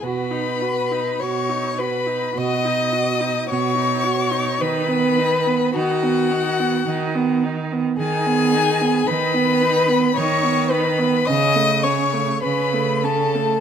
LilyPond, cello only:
\new Staff \with { instrumentName = "Cello" } { \clef bass \time 4/4 \key b \major \tempo 4 = 53 b,4 b,4 b,4 b,4 | dis4 dis4 dis4 dis4 | \key a \lydian dis4 dis4 cis4 cis4 | }